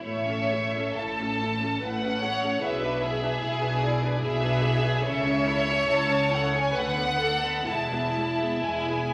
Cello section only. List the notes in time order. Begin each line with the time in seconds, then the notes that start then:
0.03 A2
0.97 A2
1.82 A2
2.63 B2
3.43 B2
4.25 B2
5.05 C#3
5.89 C#3
6.76 D3
7.67 E2
8.63 E2